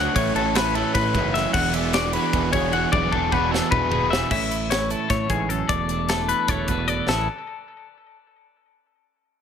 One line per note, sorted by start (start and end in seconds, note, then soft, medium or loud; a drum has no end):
0.00 0.13 D3 medium
0.00 0.13 F#3 medium
0.00 0.14 A3 medium
0.00 0.15 D4 medium
0.00 0.15 F#4 medium
0.00 0.15 G#4 medium
0.00 0.16 F#5 medium
0.14 0.31 A1 loud
0.14 0.54 A2 loud
0.14 0.95 A2 medium
0.14 0.53 E3 medium
0.14 0.37 A3 loud
0.14 0.35 C#4 medium
0.14 0.34 E4 loud
0.14 0.35 C#5 medium
0.14 kick loud
0.14 ride loud
0.35 0.82 A1 medium
0.35 0.54 A3 medium
0.35 0.55 C#4 medium
0.35 1.53 C#4 medium
0.35 0.57 E4 medium
0.35 0.55 A4 medium
0.35 ride medium
0.54 0.77 E3 medium
0.54 0.76 A3 medium
0.54 0.74 C#4 medium
0.54 1.79 E4 medium
0.54 0.74 E4 medium
0.54 0.75 B4 medium
0.54 snare loud
0.54 ride loud
0.75 1.16 A2 medium
0.75 2.15 E3 medium
0.75 0.94 E3 medium
0.75 0.94 A3 medium
0.75 0.95 C#4 medium
0.75 0.97 E4 medium
0.75 0.94 A4 medium
0.75 ride medium
0.94 1.16 A2 loud
0.94 1.16 A2 medium
0.94 1.17 E3 medium
0.94 1.15 A3 medium
0.94 1.14 C#4 medium
0.94 1.14 E4 medium
0.94 1.34 B4 medium
0.94 kick loud
0.94 snare soft
0.94 ride loud
1.14 1.45 F#1 medium
1.14 1.35 G#2 medium
1.14 1.55 A2 medium
1.14 1.33 E3 medium
1.14 1.34 A3 medium
1.14 1.35 C#4 medium
1.14 1.36 E4 medium
1.14 kick medium
1.14 ride medium
1.33 1.55 F#2 medium
1.33 1.54 E3 medium
1.33 1.53 A3 medium
1.33 1.54 C#4 medium
1.33 1.57 E4 medium
1.33 1.53 E5 medium
1.33 snare soft
1.33 ride medium
1.53 2.16 E1 loud
1.53 2.91 E2 medium
1.53 1.93 E3 medium
1.53 1.77 B3 loud
1.53 1.75 D4 loud
1.53 1.74 G#4 loud
1.53 1.74 F#5 medium
1.53 kick loud
1.53 crash loud
1.74 1.95 B3 medium
1.74 1.95 D4 medium
1.74 2.92 D4 medium
1.74 1.97 G#4 medium
1.74 1.94 E5 medium
1.74 ride medium
1.93 2.17 E3 medium
1.93 2.16 B3 medium
1.93 2.13 D4 medium
1.93 2.73 F#4 medium
1.93 2.13 G#4 medium
1.93 2.13 D5 medium
1.93 snare loud
1.93 ride medium
2.13 3.50 E3 medium
2.13 2.34 B3 medium
2.13 2.34 D4 medium
2.13 2.36 G#4 loud
2.13 2.52 B4 medium
2.13 ride medium
2.17 2.33 E3 medium
2.33 2.49 E1 medium
2.33 2.93 B2 medium
2.33 2.55 E3 medium
2.33 2.54 B3 medium
2.33 2.52 D4 medium
2.33 2.52 G#4 medium
2.33 kick loud
2.33 ride loud
2.52 2.84 E1 medium
2.52 2.71 E3 medium
2.52 2.73 B3 medium
2.52 2.73 D4 medium
2.52 2.75 G#4 medium
2.52 3.16 G#4 medium
2.52 2.73 C#5 medium
2.52 kick medium
2.52 ride medium
2.72 2.91 E3 medium
2.72 2.92 B3 medium
2.72 2.94 D4 medium
2.72 2.91 F#4 medium
2.72 2.95 G#4 medium
2.72 2.92 F#5 medium
2.72 ride medium
2.92 3.08 E1 loud
2.92 4.30 E2 medium
2.92 3.31 E3 medium
2.92 3.15 B3 medium
2.92 3.13 D4 loud
2.92 3.11 G#4 loud
2.92 3.12 D5 medium
2.92 kick loud
2.92 high tom medium
3.12 3.59 E1 medium
3.12 4.29 D4 medium
3.12 3.33 D4 medium
3.12 3.34 G#4 medium
3.12 3.32 A4 medium
3.12 kick medium
3.16 3.32 B3 medium
3.32 3.54 E3 medium
3.32 3.54 B3 medium
3.32 3.52 D4 medium
3.32 4.10 F#4 medium
3.32 3.51 G#4 medium
3.32 3.51 B4 medium
3.32 kick medium
3.51 4.69 E3 medium
3.51 3.72 B3 medium
3.51 3.73 D4 medium
3.51 3.74 G#4 medium
3.51 3.71 A4 medium
3.51 snare medium
3.55 3.71 E3 medium
3.71 3.93 E2 medium
3.71 4.31 B2 medium
3.71 3.92 E3 medium
3.71 3.91 B3 medium
3.71 3.90 D4 medium
3.71 3.88 G#4 medium
3.71 4.11 B4 medium
3.71 kick loud
3.71 mid tom medium
3.90 4.22 E1 medium
3.90 4.09 E3 medium
3.90 4.10 B3 medium
3.90 4.11 D4 medium
3.90 4.12 G#4 medium
3.90 4.30 G#4 medium
3.90 floor tom medium
4.10 4.30 E3 medium
4.10 4.30 B3 medium
4.10 4.31 D4 medium
4.10 4.29 F#4 medium
4.10 4.31 G#4 medium
4.10 4.30 E5 medium
4.10 snare loud
4.30 4.93 A1 medium
4.30 5.08 A2 medium
4.30 4.70 C#4 medium
4.30 4.71 E5 medium
4.30 kick loud
4.30 crash loud
4.51 4.90 E4 medium
4.51 closed hi-hat medium
4.70 6.08 E3 medium
4.70 5.68 C#4 medium
4.70 4.91 C#5 medium
4.70 snare loud
4.70 closed hi-hat medium
4.90 5.90 E4 medium
4.90 5.11 A4 medium
4.90 closed hi-hat medium
5.10 5.30 A2 medium
5.10 5.26 A2 medium
5.10 5.30 C#5 medium
5.10 kick loud
5.10 snare soft
5.10 closed hi-hat medium
5.30 5.61 A1 loud
5.30 5.50 G#2 medium
5.30 5.49 G#4 medium
5.30 kick medium
5.30 closed hi-hat medium
5.49 5.68 F#2 medium
5.49 5.70 A4 medium
5.49 closed hi-hat medium
5.68 6.31 E1 medium
5.68 7.08 E2 medium
5.68 6.09 A3 medium
5.68 6.09 D5 medium
5.68 kick loud
5.68 closed hi-hat medium
5.89 6.29 D4 medium
5.89 closed hi-hat medium
6.09 7.08 E3 medium
6.09 6.49 A3 medium
6.09 6.29 A4 medium
6.09 snare loud
6.09 closed hi-hat medium
6.29 6.70 D4 medium
6.29 6.49 B4 medium
6.29 closed hi-hat medium
6.48 6.64 E1 loud
6.48 7.09 A3 medium
6.48 6.68 C#5 medium
6.48 kick loud
6.48 closed hi-hat medium
6.68 7.00 E1 medium
6.68 7.09 B2 medium
6.68 7.07 D4 medium
6.68 6.88 B4 medium
6.68 kick medium
6.68 closed hi-hat medium
6.88 7.07 A4 medium
6.88 7.08 D5 medium
6.88 closed hi-hat medium
7.07 7.26 A1 medium
7.07 7.26 A2 medium
7.07 7.27 E3 medium
7.07 7.27 C#4 medium
7.07 7.28 E4 medium
7.07 7.27 A4 medium
7.07 snare loud
7.11 7.28 G#4 medium